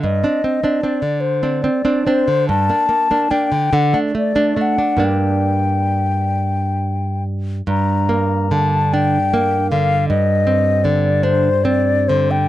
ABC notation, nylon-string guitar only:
X:1
M:6/8
L:1/16
Q:3/8=48
K:Gm
V:1 name="Nylon-string guitar"
G,, [CD] C [CD] [CD] D,2 [CD] C [CD] [CD] D, | G,, [B,D] B, [B,D] [B,D] D, D, [A,D] A, [A,D] [A,D] D | [G,,B,D]12 | G,,2 B,2 D,2 D2 B,2 D,2 |
G,,2 C2 D,2 D2 C2 D,2 |]